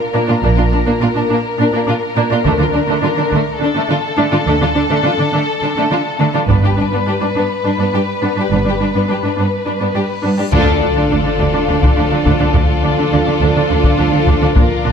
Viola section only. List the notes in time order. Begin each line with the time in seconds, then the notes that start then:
0.14 D4
0.28 D4
0.43 D4
0.57 D4
0.72 D4
0.86 D4
1.00 D4
1.15 D4
1.29 D4
1.58 D4
1.72 D4
1.86 D4
2.15 D4
2.30 D4
2.44 D4
2.58 D4
2.73 D4
2.87 D4
3.02 D4
3.16 D4
3.30 D4
3.60 D4
3.74 D4
3.89 D4
4.17 D4
4.32 D4
4.47 D4
4.61 D4
4.75 D4
4.90 D4
5.03 D4
5.18 D4
5.33 D4
5.62 D4
5.77 D4
5.91 D4
6.20 D4
6.34 D4
6.49 D4
6.63 D4
6.77 D4
6.92 D4
7.06 D4
7.20 D4
7.35 D4
7.64 D4
7.78 D4
7.93 D4
8.22 D4
8.36 D4
8.51 D4
8.65 D4
8.80 D4
8.94 D4
9.09 D4
9.23 D4
9.36 D4
9.66 D4
9.80 D4
9.94 D4
10.23 D4
10.38 D4
10.52 D4
10.82 D4
10.96 D4
11.11 D4
11.26 D4
11.39 D4
11.53 D4
11.69 D4
11.83 D4
11.97 D4
12.11 D4
12.25 D4
12.40 D4
12.54 D4
12.83 D4
12.98 D4
13.12 D4
13.27 D4
13.41 D4
13.55 D4
13.69 D4
13.83 D4
13.98 D4
14.12 D4
14.27 D4
14.42 D4
14.55 D4
14.85 D4